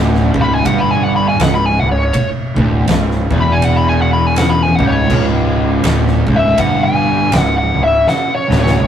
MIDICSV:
0, 0, Header, 1, 5, 480
1, 0, Start_track
1, 0, Tempo, 740741
1, 1383, Time_signature, 4, 2, 24, 8
1, 5748, End_track
2, 0, Start_track
2, 0, Title_t, "Lead electric guitar"
2, 0, Program_c, 0, 29
2, 270, Note_on_c, 0, 83, 105
2, 352, Note_off_c, 0, 83, 0
2, 354, Note_on_c, 0, 80, 89
2, 421, Note_off_c, 0, 80, 0
2, 423, Note_on_c, 0, 78, 92
2, 507, Note_on_c, 0, 83, 93
2, 514, Note_off_c, 0, 78, 0
2, 588, Note_off_c, 0, 83, 0
2, 588, Note_on_c, 0, 80, 100
2, 668, Note_off_c, 0, 80, 0
2, 668, Note_on_c, 0, 78, 84
2, 725, Note_off_c, 0, 78, 0
2, 752, Note_on_c, 0, 83, 90
2, 831, Note_off_c, 0, 83, 0
2, 833, Note_on_c, 0, 80, 81
2, 918, Note_off_c, 0, 80, 0
2, 918, Note_on_c, 0, 78, 97
2, 1001, Note_off_c, 0, 78, 0
2, 1004, Note_on_c, 0, 83, 87
2, 1073, Note_off_c, 0, 83, 0
2, 1073, Note_on_c, 0, 80, 95
2, 1164, Note_on_c, 0, 78, 109
2, 1184, Note_off_c, 0, 80, 0
2, 1213, Note_off_c, 0, 78, 0
2, 1243, Note_on_c, 0, 73, 106
2, 1479, Note_off_c, 0, 73, 0
2, 2207, Note_on_c, 0, 83, 104
2, 2281, Note_on_c, 0, 80, 84
2, 2286, Note_off_c, 0, 83, 0
2, 2361, Note_off_c, 0, 80, 0
2, 2361, Note_on_c, 0, 78, 105
2, 2439, Note_on_c, 0, 83, 98
2, 2442, Note_off_c, 0, 78, 0
2, 2503, Note_off_c, 0, 83, 0
2, 2520, Note_on_c, 0, 80, 95
2, 2599, Note_off_c, 0, 80, 0
2, 2602, Note_on_c, 0, 78, 86
2, 2652, Note_off_c, 0, 78, 0
2, 2677, Note_on_c, 0, 83, 101
2, 2765, Note_off_c, 0, 83, 0
2, 2765, Note_on_c, 0, 80, 99
2, 2826, Note_off_c, 0, 80, 0
2, 2839, Note_on_c, 0, 78, 96
2, 2912, Note_on_c, 0, 83, 97
2, 2921, Note_off_c, 0, 78, 0
2, 2997, Note_off_c, 0, 83, 0
2, 2997, Note_on_c, 0, 80, 100
2, 3079, Note_off_c, 0, 80, 0
2, 3079, Note_on_c, 0, 78, 92
2, 3130, Note_off_c, 0, 78, 0
2, 3158, Note_on_c, 0, 73, 112
2, 3396, Note_off_c, 0, 73, 0
2, 4122, Note_on_c, 0, 76, 99
2, 4268, Note_off_c, 0, 76, 0
2, 4273, Note_on_c, 0, 78, 104
2, 4424, Note_off_c, 0, 78, 0
2, 4433, Note_on_c, 0, 80, 107
2, 4796, Note_off_c, 0, 80, 0
2, 4796, Note_on_c, 0, 78, 107
2, 4894, Note_off_c, 0, 78, 0
2, 4912, Note_on_c, 0, 78, 98
2, 5063, Note_off_c, 0, 78, 0
2, 5078, Note_on_c, 0, 76, 106
2, 5227, Note_off_c, 0, 76, 0
2, 5242, Note_on_c, 0, 78, 97
2, 5389, Note_off_c, 0, 78, 0
2, 5408, Note_on_c, 0, 73, 101
2, 5552, Note_off_c, 0, 73, 0
2, 5572, Note_on_c, 0, 73, 97
2, 5748, Note_off_c, 0, 73, 0
2, 5748, End_track
3, 0, Start_track
3, 0, Title_t, "Distorted electric guitar"
3, 0, Program_c, 1, 30
3, 0, Note_on_c, 1, 38, 112
3, 211, Note_off_c, 1, 38, 0
3, 219, Note_on_c, 1, 37, 95
3, 415, Note_off_c, 1, 37, 0
3, 418, Note_on_c, 1, 43, 109
3, 895, Note_off_c, 1, 43, 0
3, 898, Note_on_c, 1, 37, 75
3, 1124, Note_off_c, 1, 37, 0
3, 1178, Note_on_c, 1, 37, 78
3, 1341, Note_off_c, 1, 37, 0
3, 1658, Note_on_c, 1, 38, 103
3, 1855, Note_off_c, 1, 38, 0
3, 1864, Note_on_c, 1, 37, 80
3, 2086, Note_off_c, 1, 37, 0
3, 2142, Note_on_c, 1, 40, 101
3, 3093, Note_off_c, 1, 40, 0
3, 3101, Note_on_c, 1, 37, 107
3, 3293, Note_off_c, 1, 37, 0
3, 3301, Note_on_c, 1, 37, 111
3, 3776, Note_off_c, 1, 37, 0
3, 3783, Note_on_c, 1, 38, 116
3, 4053, Note_off_c, 1, 38, 0
3, 4062, Note_on_c, 1, 37, 111
3, 4257, Note_off_c, 1, 37, 0
3, 4262, Note_on_c, 1, 43, 112
3, 4737, Note_off_c, 1, 43, 0
3, 4743, Note_on_c, 1, 37, 78
3, 4966, Note_off_c, 1, 37, 0
3, 5018, Note_on_c, 1, 37, 74
3, 5181, Note_off_c, 1, 37, 0
3, 5501, Note_on_c, 1, 38, 111
3, 5698, Note_off_c, 1, 38, 0
3, 5700, Note_on_c, 1, 37, 79
3, 5748, Note_off_c, 1, 37, 0
3, 5748, End_track
4, 0, Start_track
4, 0, Title_t, "Fingered electric bass"
4, 0, Program_c, 2, 33
4, 0, Note_on_c, 2, 26, 105
4, 201, Note_off_c, 2, 26, 0
4, 222, Note_on_c, 2, 25, 99
4, 410, Note_off_c, 2, 25, 0
4, 421, Note_on_c, 2, 31, 104
4, 876, Note_off_c, 2, 31, 0
4, 898, Note_on_c, 2, 25, 84
4, 1160, Note_off_c, 2, 25, 0
4, 1179, Note_on_c, 2, 25, 90
4, 1368, Note_off_c, 2, 25, 0
4, 1661, Note_on_c, 2, 26, 102
4, 1849, Note_off_c, 2, 26, 0
4, 1861, Note_on_c, 2, 25, 87
4, 2121, Note_off_c, 2, 25, 0
4, 2140, Note_on_c, 2, 28, 99
4, 3075, Note_off_c, 2, 28, 0
4, 3102, Note_on_c, 2, 25, 110
4, 3289, Note_off_c, 2, 25, 0
4, 3301, Note_on_c, 2, 25, 99
4, 3756, Note_off_c, 2, 25, 0
4, 3781, Note_on_c, 2, 26, 101
4, 4041, Note_off_c, 2, 26, 0
4, 4061, Note_on_c, 2, 25, 99
4, 4249, Note_off_c, 2, 25, 0
4, 4260, Note_on_c, 2, 31, 102
4, 4716, Note_off_c, 2, 31, 0
4, 4744, Note_on_c, 2, 25, 88
4, 5003, Note_off_c, 2, 25, 0
4, 5024, Note_on_c, 2, 25, 89
4, 5211, Note_off_c, 2, 25, 0
4, 5503, Note_on_c, 2, 26, 104
4, 5691, Note_off_c, 2, 26, 0
4, 5705, Note_on_c, 2, 25, 93
4, 5748, Note_off_c, 2, 25, 0
4, 5748, End_track
5, 0, Start_track
5, 0, Title_t, "Drums"
5, 96, Note_on_c, 9, 38, 34
5, 161, Note_off_c, 9, 38, 0
5, 222, Note_on_c, 9, 36, 111
5, 287, Note_off_c, 9, 36, 0
5, 423, Note_on_c, 9, 36, 111
5, 425, Note_on_c, 9, 53, 85
5, 488, Note_off_c, 9, 36, 0
5, 490, Note_off_c, 9, 53, 0
5, 905, Note_on_c, 9, 53, 77
5, 915, Note_on_c, 9, 38, 115
5, 970, Note_off_c, 9, 53, 0
5, 980, Note_off_c, 9, 38, 0
5, 1383, Note_on_c, 9, 36, 101
5, 1386, Note_on_c, 9, 53, 78
5, 1448, Note_off_c, 9, 36, 0
5, 1451, Note_off_c, 9, 53, 0
5, 1662, Note_on_c, 9, 36, 107
5, 1727, Note_off_c, 9, 36, 0
5, 1864, Note_on_c, 9, 53, 79
5, 1874, Note_on_c, 9, 38, 116
5, 1929, Note_off_c, 9, 53, 0
5, 1939, Note_off_c, 9, 38, 0
5, 2017, Note_on_c, 9, 38, 33
5, 2081, Note_off_c, 9, 38, 0
5, 2143, Note_on_c, 9, 36, 114
5, 2207, Note_off_c, 9, 36, 0
5, 2347, Note_on_c, 9, 53, 77
5, 2412, Note_off_c, 9, 53, 0
5, 2827, Note_on_c, 9, 53, 79
5, 2837, Note_on_c, 9, 38, 122
5, 2892, Note_off_c, 9, 53, 0
5, 2902, Note_off_c, 9, 38, 0
5, 3102, Note_on_c, 9, 36, 109
5, 3167, Note_off_c, 9, 36, 0
5, 3304, Note_on_c, 9, 36, 99
5, 3306, Note_on_c, 9, 49, 101
5, 3369, Note_off_c, 9, 36, 0
5, 3371, Note_off_c, 9, 49, 0
5, 3782, Note_on_c, 9, 53, 82
5, 3793, Note_on_c, 9, 38, 114
5, 3847, Note_off_c, 9, 53, 0
5, 3857, Note_off_c, 9, 38, 0
5, 3933, Note_on_c, 9, 38, 34
5, 3998, Note_off_c, 9, 38, 0
5, 4061, Note_on_c, 9, 36, 112
5, 4126, Note_off_c, 9, 36, 0
5, 4262, Note_on_c, 9, 36, 115
5, 4264, Note_on_c, 9, 53, 84
5, 4327, Note_off_c, 9, 36, 0
5, 4329, Note_off_c, 9, 53, 0
5, 4743, Note_on_c, 9, 53, 86
5, 4754, Note_on_c, 9, 38, 113
5, 4808, Note_off_c, 9, 53, 0
5, 4819, Note_off_c, 9, 38, 0
5, 5232, Note_on_c, 9, 38, 62
5, 5297, Note_off_c, 9, 38, 0
5, 5513, Note_on_c, 9, 38, 76
5, 5578, Note_off_c, 9, 38, 0
5, 5612, Note_on_c, 9, 38, 69
5, 5677, Note_off_c, 9, 38, 0
5, 5703, Note_on_c, 9, 48, 80
5, 5748, Note_off_c, 9, 48, 0
5, 5748, End_track
0, 0, End_of_file